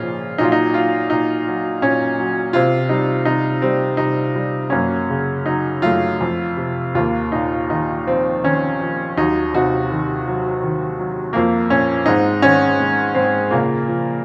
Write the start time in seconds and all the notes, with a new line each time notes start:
Already playing: A#2 C#3 F3 A#3 C#4 D#4 F4
0.02 F3
0.38 A#2 F#3 D#4
0.43 F4
0.52 D#4
0.74 F#3 F4
1.10 A#2 D#4
1.47 F#3
1.82 A#2 C#4
2.19 F#3
2.53 C3 C4 F4
2.89 G3 D#4
3.25 C3 D#4
3.62 G3 C4
3.97 C3 D#4
4.36 G3
4.70 F#2 A#3 C#4
5.09 C#3
5.46 F#3 D#4
5.82 F#2 A3 F4
6.21 F2
6.57 C3
6.95 D#2 A#3 F4
7.32 A#2 D#4
7.70 D#3 D#4
8.07 F3 C4
8.44 D#3 C#4
8.81 F3
9.17 D#2 F#3 D#4
9.54 C3 D#4 F#4
9.91 D#3
10.27 F#3
10.63 D#3
10.99 F#3
11.33 F2 F3 A#3
11.70 A#2 C#4
12.06 G#2 C4 D#4
12.42 D#3 C#4
12.80 G#3
13.15 G#2 C4
13.51 A#2 C#3 A#3
13.88 F3